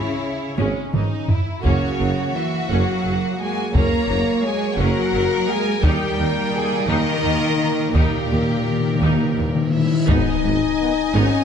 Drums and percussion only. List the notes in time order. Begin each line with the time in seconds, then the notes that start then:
0.58 taiko high
0.94 taiko mid
1.29 taiko low
1.64 taiko
3.75 taiko
5.83 taiko
7.94 taiko
10.08 taiko